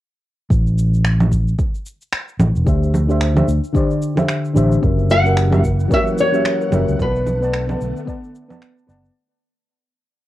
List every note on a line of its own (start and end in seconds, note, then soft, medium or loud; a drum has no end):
0.50 1.53 A1 medium
0.50 kick loud
0.50 cabasa soft
0.67 cabasa soft
0.78 cabasa medium
0.94 cabasa soft
1.04 finger snap loud
1.04 cabasa soft
1.20 low conga medium
1.20 cabasa soft
1.31 kick medium
1.31 cabasa medium
1.48 cabasa soft
1.59 kick loud
1.59 cabasa soft
1.75 cabasa soft
1.86 cabasa medium
2.01 cabasa soft
2.13 finger snap medium
2.13 cabasa soft
2.29 cabasa soft
2.39 2.50 A1 medium
2.39 low conga medium
2.39 cabasa medium
2.55 2.63 E1 medium
2.55 cabasa soft
2.65 3.42 D2 loud
2.65 3.05 D3 medium
2.65 3.05 D4 medium
2.65 3.06 G4 medium
2.65 3.06 C5 medium
2.65 3.07 E5 medium
2.65 kick loud
2.65 cabasa soft
2.83 cabasa soft
2.94 low conga medium
2.94 cabasa medium
3.07 3.32 D3 medium
3.07 3.32 D4 medium
3.07 3.33 G4 medium
3.07 3.33 C5 medium
3.07 3.34 E5 medium
3.07 cabasa soft
3.21 finger snap loud
3.21 cabasa soft
3.34 3.46 D3 medium
3.34 3.47 D4 medium
3.34 3.47 G4 medium
3.34 3.48 C5 medium
3.34 3.48 E5 medium
3.34 low conga medium
3.34 cabasa soft
3.48 3.59 D2 medium
3.48 cabasa medium
3.64 cabasa soft
3.73 4.13 D3 medium
3.73 4.13 D4 medium
3.73 4.14 G4 medium
3.73 4.14 C5 medium
3.73 kick loud
3.73 cabasa soft
3.77 4.15 D5 medium
3.91 cabasa soft
4.02 cabasa medium
4.15 4.52 D3 medium
4.15 4.53 D4 medium
4.15 4.53 G4 medium
4.15 4.54 C5 medium
4.15 4.54 E5 medium
4.15 low conga medium
4.15 cabasa soft
4.29 finger snap medium
4.29 cabasa soft
4.45 cabasa soft
4.54 4.76 A1 medium
4.54 4.79 D3 medium
4.54 4.80 D4 medium
4.54 4.80 G4 medium
4.54 4.81 C5 medium
4.54 cabasa medium
4.58 4.81 E5 loud
4.72 cabasa soft
4.81 5.85 F#1 medium
4.81 6.97 E3 medium
4.81 5.21 F#3 medium
4.81 6.97 A#3 medium
4.81 5.21 C#4 medium
4.81 5.22 G4 medium
4.81 5.22 A#4 medium
4.81 5.23 E5 medium
4.81 9.11 F#5 medium
4.81 kick loud
4.81 cabasa soft
4.99 cabasa soft
5.10 5.93 F#5 loud
5.10 cabasa medium
5.23 5.48 F#3 medium
5.23 5.48 C#4 medium
5.23 5.49 G4 medium
5.23 5.49 A#4 medium
5.23 cabasa soft
5.27 5.50 E5 medium
5.37 finger snap loud
5.37 cabasa soft
5.50 5.62 F#3 medium
5.50 5.62 C#4 medium
5.50 5.63 G4 medium
5.50 5.64 A#4 medium
5.50 low conga medium
5.50 cabasa soft
5.54 5.64 E5 medium
5.64 kick medium
5.64 cabasa medium
5.80 cabasa soft
5.88 6.29 F#3 medium
5.88 6.29 C#4 medium
5.88 6.30 G4 medium
5.88 6.30 A#4 medium
5.88 kick loud
5.88 cabasa soft
5.92 6.31 C#5 loud
5.92 6.01 E5 loud
6.07 cabasa soft
6.18 7.01 C#5 medium
6.18 cabasa medium
6.32 6.68 F#3 medium
6.32 6.69 C#4 medium
6.32 6.69 G4 medium
6.32 6.70 A#4 medium
6.32 6.70 E5 medium
6.32 cabasa soft
6.45 finger snap medium
6.45 cabasa soft
6.61 cabasa soft
6.71 6.83 F#1 medium
6.71 6.96 F#3 medium
6.71 6.96 C#4 medium
6.71 6.97 G4 medium
6.71 6.97 A#4 medium
6.71 6.98 E5 loud
6.71 low conga medium
6.71 cabasa medium
6.88 6.96 C#2 medium
6.88 cabasa soft
6.98 7.75 B1 loud
6.98 9.13 D3 medium
6.98 9.13 A3 medium
6.98 7.37 B3 medium
6.98 9.14 B3 medium
6.98 7.38 B4 medium
6.98 8.59 B4 medium
6.98 7.38 D5 medium
6.98 7.39 F#5 medium
6.98 7.39 A5 medium
6.98 kick loud
6.98 cabasa soft
7.15 cabasa soft
7.26 low conga medium
7.26 cabasa medium
7.40 7.64 B3 medium
7.40 7.65 B4 medium
7.40 7.65 D5 medium
7.40 7.66 F#5 medium
7.40 7.66 A5 medium
7.40 cabasa soft
7.53 finger snap loud
7.53 cabasa soft
7.67 7.79 B3 medium
7.67 7.79 B4 medium
7.67 7.80 D5 medium
7.67 7.80 F#5 medium
7.67 7.81 A5 medium
7.67 low conga medium
7.67 cabasa soft
7.81 7.91 B1 medium
7.81 cabasa medium
7.97 cabasa soft
8.05 8.45 B3 medium
8.05 8.46 B4 medium
8.05 8.46 D5 medium
8.05 8.47 F#5 medium
8.05 8.47 A5 medium
8.05 kick loud
8.05 cabasa soft
8.24 cabasa soft
8.35 cabasa medium
8.48 8.85 B3 medium
8.48 8.85 B4 medium
8.48 8.86 D5 medium
8.48 8.86 F#5 medium
8.48 8.87 A5 loud
8.48 low conga medium
8.48 cabasa soft
8.62 finger snap medium
8.62 cabasa soft
8.78 cabasa soft
8.87 9.08 F#1 loud
8.87 9.12 B3 medium
8.87 9.12 B4 medium
8.87 9.13 D5 medium
8.87 9.13 F#5 medium
8.87 9.14 A5 loud
8.87 cabasa medium